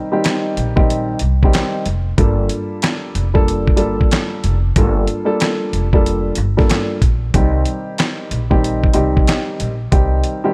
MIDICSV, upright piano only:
0, 0, Header, 1, 2, 480
1, 0, Start_track
1, 0, Tempo, 645161
1, 1623, Time_signature, 4, 2, 24, 8
1, 7838, End_track
2, 0, Start_track
2, 0, Title_t, "Upright piano"
2, 0, Program_c, 0, 0
2, 87, Note_on_c, 0, 51, 100
2, 89, Note_on_c, 0, 55, 87
2, 91, Note_on_c, 0, 60, 84
2, 93, Note_on_c, 0, 63, 88
2, 94, Note_on_c, 0, 67, 105
2, 522, Note_off_c, 0, 51, 0
2, 523, Note_off_c, 0, 55, 0
2, 524, Note_off_c, 0, 60, 0
2, 525, Note_off_c, 0, 63, 0
2, 526, Note_off_c, 0, 67, 0
2, 564, Note_on_c, 0, 51, 93
2, 566, Note_on_c, 0, 55, 82
2, 568, Note_on_c, 0, 60, 84
2, 570, Note_on_c, 0, 63, 83
2, 571, Note_on_c, 0, 67, 99
2, 877, Note_off_c, 0, 51, 0
2, 878, Note_off_c, 0, 55, 0
2, 879, Note_off_c, 0, 60, 0
2, 880, Note_off_c, 0, 63, 0
2, 881, Note_off_c, 0, 67, 0
2, 1070, Note_on_c, 0, 51, 91
2, 1072, Note_on_c, 0, 55, 89
2, 1073, Note_on_c, 0, 60, 89
2, 1074, Note_on_c, 0, 63, 80
2, 1077, Note_on_c, 0, 67, 103
2, 1370, Note_off_c, 0, 51, 0
2, 1371, Note_off_c, 0, 55, 0
2, 1371, Note_off_c, 0, 60, 0
2, 1372, Note_off_c, 0, 63, 0
2, 1373, Note_off_c, 0, 67, 0
2, 1619, Note_on_c, 0, 55, 93
2, 1621, Note_on_c, 0, 58, 85
2, 1623, Note_on_c, 0, 62, 92
2, 1626, Note_on_c, 0, 65, 85
2, 1627, Note_on_c, 0, 69, 93
2, 2407, Note_off_c, 0, 55, 0
2, 2408, Note_off_c, 0, 58, 0
2, 2409, Note_off_c, 0, 62, 0
2, 2411, Note_off_c, 0, 65, 0
2, 2411, Note_off_c, 0, 69, 0
2, 2484, Note_on_c, 0, 55, 86
2, 2487, Note_on_c, 0, 58, 87
2, 2489, Note_on_c, 0, 62, 85
2, 2489, Note_on_c, 0, 65, 81
2, 2492, Note_on_c, 0, 69, 108
2, 2789, Note_off_c, 0, 55, 0
2, 2791, Note_off_c, 0, 58, 0
2, 2794, Note_off_c, 0, 62, 0
2, 2795, Note_off_c, 0, 65, 0
2, 2798, Note_off_c, 0, 69, 0
2, 2801, Note_on_c, 0, 55, 99
2, 2803, Note_on_c, 0, 58, 92
2, 2805, Note_on_c, 0, 62, 85
2, 2806, Note_on_c, 0, 65, 88
2, 2809, Note_on_c, 0, 69, 105
2, 3382, Note_off_c, 0, 55, 0
2, 3383, Note_off_c, 0, 58, 0
2, 3384, Note_off_c, 0, 62, 0
2, 3385, Note_off_c, 0, 65, 0
2, 3386, Note_off_c, 0, 69, 0
2, 3551, Note_on_c, 0, 55, 84
2, 3553, Note_on_c, 0, 58, 87
2, 3555, Note_on_c, 0, 62, 87
2, 3557, Note_on_c, 0, 65, 92
2, 3559, Note_on_c, 0, 69, 99
2, 3896, Note_off_c, 0, 55, 0
2, 3897, Note_off_c, 0, 58, 0
2, 3899, Note_off_c, 0, 62, 0
2, 3901, Note_off_c, 0, 65, 0
2, 3903, Note_off_c, 0, 69, 0
2, 3907, Note_on_c, 0, 55, 92
2, 3909, Note_on_c, 0, 58, 85
2, 3911, Note_on_c, 0, 62, 82
2, 3913, Note_on_c, 0, 65, 90
2, 3914, Note_on_c, 0, 69, 113
2, 4352, Note_off_c, 0, 55, 0
2, 4353, Note_off_c, 0, 58, 0
2, 4354, Note_off_c, 0, 62, 0
2, 4355, Note_off_c, 0, 65, 0
2, 4356, Note_off_c, 0, 69, 0
2, 4418, Note_on_c, 0, 55, 98
2, 4420, Note_on_c, 0, 58, 86
2, 4421, Note_on_c, 0, 62, 82
2, 4423, Note_on_c, 0, 65, 87
2, 4425, Note_on_c, 0, 69, 103
2, 4724, Note_off_c, 0, 55, 0
2, 4725, Note_off_c, 0, 58, 0
2, 4725, Note_off_c, 0, 62, 0
2, 4726, Note_off_c, 0, 65, 0
2, 4727, Note_off_c, 0, 69, 0
2, 4889, Note_on_c, 0, 55, 94
2, 4890, Note_on_c, 0, 58, 84
2, 4892, Note_on_c, 0, 62, 84
2, 4894, Note_on_c, 0, 65, 85
2, 4895, Note_on_c, 0, 69, 98
2, 5199, Note_off_c, 0, 55, 0
2, 5200, Note_off_c, 0, 58, 0
2, 5201, Note_off_c, 0, 62, 0
2, 5202, Note_off_c, 0, 65, 0
2, 5202, Note_off_c, 0, 69, 0
2, 5463, Note_on_c, 0, 51, 87
2, 5465, Note_on_c, 0, 55, 84
2, 5467, Note_on_c, 0, 60, 87
2, 5469, Note_on_c, 0, 63, 82
2, 5470, Note_on_c, 0, 67, 102
2, 6249, Note_off_c, 0, 51, 0
2, 6250, Note_off_c, 0, 55, 0
2, 6251, Note_off_c, 0, 60, 0
2, 6252, Note_off_c, 0, 63, 0
2, 6253, Note_off_c, 0, 67, 0
2, 6325, Note_on_c, 0, 51, 93
2, 6328, Note_on_c, 0, 55, 81
2, 6330, Note_on_c, 0, 60, 84
2, 6332, Note_on_c, 0, 63, 81
2, 6333, Note_on_c, 0, 67, 101
2, 6637, Note_off_c, 0, 51, 0
2, 6638, Note_off_c, 0, 55, 0
2, 6640, Note_off_c, 0, 60, 0
2, 6641, Note_off_c, 0, 63, 0
2, 6642, Note_off_c, 0, 67, 0
2, 6648, Note_on_c, 0, 51, 96
2, 6649, Note_on_c, 0, 55, 84
2, 6651, Note_on_c, 0, 60, 88
2, 6654, Note_on_c, 0, 63, 95
2, 6655, Note_on_c, 0, 67, 105
2, 7226, Note_off_c, 0, 51, 0
2, 7227, Note_off_c, 0, 55, 0
2, 7228, Note_off_c, 0, 60, 0
2, 7229, Note_off_c, 0, 63, 0
2, 7230, Note_off_c, 0, 67, 0
2, 7377, Note_on_c, 0, 51, 90
2, 7379, Note_on_c, 0, 55, 84
2, 7381, Note_on_c, 0, 60, 83
2, 7382, Note_on_c, 0, 63, 85
2, 7384, Note_on_c, 0, 67, 99
2, 7734, Note_off_c, 0, 51, 0
2, 7735, Note_off_c, 0, 55, 0
2, 7736, Note_off_c, 0, 60, 0
2, 7737, Note_off_c, 0, 63, 0
2, 7738, Note_off_c, 0, 67, 0
2, 7767, Note_on_c, 0, 51, 106
2, 7768, Note_on_c, 0, 55, 90
2, 7770, Note_on_c, 0, 60, 86
2, 7771, Note_on_c, 0, 63, 87
2, 7773, Note_on_c, 0, 67, 106
2, 7838, Note_off_c, 0, 51, 0
2, 7838, Note_off_c, 0, 55, 0
2, 7838, Note_off_c, 0, 60, 0
2, 7838, Note_off_c, 0, 63, 0
2, 7838, Note_off_c, 0, 67, 0
2, 7838, End_track
0, 0, End_of_file